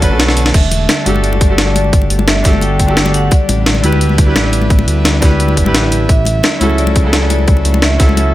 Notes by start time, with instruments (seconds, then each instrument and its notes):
Already playing: analog synth pad D3 A3 C#5 A5, grand piano D4 F#4 A4
0.00 analog synth bass F#1, grand piano C#4 D4 F#4 B4, kick, closed hi-hat
0.10 analog synth bass B1, grand piano C#4 D4 F#4 A4
0.20 snare, closed hi-hat
0.29 snare
0.37 analog synth bass B1, closed hi-hat
0.46 snare
0.54 analog synth bass E1, analog synth pad G3, vibraphone E5, kick, closed hi-hat, crash
0.71 closed hi-hat, muted conga
0.89 snare, closed hi-hat, muted conga
1.04 analog synth bass G1, grand piano D4 F#4 G4, closed hi-hat, high conga
1.08 grand piano A4
1.15 muted conga, high conga
1.24 vibraphone D5, closed hi-hat
1.33 muted conga, high conga
1.41 kick, closed hi-hat
1.48 grand piano D4 F#4 G4
1.52 grand piano A4
1.58 snare, closed hi-hat, muted conga
1.76 vibraphone D5, closed hi-hat, muted conga
1.84 high conga
1.93 kick, closed hi-hat
2.02 muted conga
2.10 analog synth bass G1, closed hi-hat
2.19 muted conga
2.28 vibraphone E5, snare, closed hi-hat
2.43 analog synth bass G1, grand piano D4 F#4 G4, kick, snare, closed hi-hat, muted conga
2.47 grand piano A4
2.53 high conga
2.61 vibraphone G5, closed hi-hat, muted conga
2.79 kick, closed hi-hat
2.86 grand piano D4 F#4 G4, muted conga, high conga
2.91 grand piano A4
2.97 snare, closed hi-hat
3.06 muted conga
3.14 vibraphone F#5, closed hi-hat
3.31 analog synth pad B3 E4, vibraphone D5, kick, closed hi-hat, muted conga
3.49 analog synth bass A1, vibraphone D5, closed hi-hat, muted conga
3.66 snare, closed hi-hat
3.74 muted conga
3.82 analog synth bass D2, grand piano D4 E4 G4, closed hi-hat, high conga
3.86 grand piano B4
3.92 muted conga, high conga
4.01 closed hi-hat
4.09 high conga
4.18 kick, closed hi-hat, muted conga
4.25 grand piano D4 E4 G4
4.29 grand piano B4
4.35 analog synth bass A1, snare, closed hi-hat, muted conga
4.53 closed hi-hat
4.61 muted conga, high conga
4.70 kick, closed hi-hat
4.79 muted conga
4.87 analog synth bass D2, closed hi-hat
5.05 snare, closed hi-hat, muted conga
5.20 analog synth bass D2, grand piano D4 E4 G4, kick, snare, closed hi-hat, muted conga
5.25 grand piano B4
5.31 high conga
5.40 closed hi-hat
5.48 muted conga
5.57 analog synth bass E1, kick, closed hi-hat
5.64 analog synth bass A1, grand piano D4 E4 G4, muted conga, high conga
5.68 grand piano B4
5.74 snare, closed hi-hat
5.92 closed hi-hat, muted conga
6.09 analog synth bass A1, analog synth pad F#3 A3, vibraphone E5, kick, closed hi-hat
6.25 closed hi-hat, muted conga
6.43 snare, closed hi-hat, muted conga
6.59 analog synth bass C#2, grand piano C#4 E4 F#4, closed hi-hat, high conga
6.63 grand piano A4
6.70 muted conga, high conga
6.78 vibraphone D5, closed hi-hat
6.87 muted conga, high conga
6.96 kick, closed hi-hat
7.03 grand piano C#3 E4 F#4
7.07 grand piano A4
7.13 snare, closed hi-hat, muted conga
7.30 vibraphone D5, closed hi-hat, muted conga
7.39 high conga
7.48 kick, closed hi-hat
7.57 muted conga
7.65 analog synth bass C#2, closed hi-hat
7.74 muted conga
7.82 vibraphone E5, snare, closed hi-hat
7.98 analog synth bass C#2, grand piano C#4 E4 F#4, kick, snare, closed hi-hat, muted conga
8.02 grand piano A4
8.09 high conga
8.17 vibraphone E5, closed hi-hat, muted conga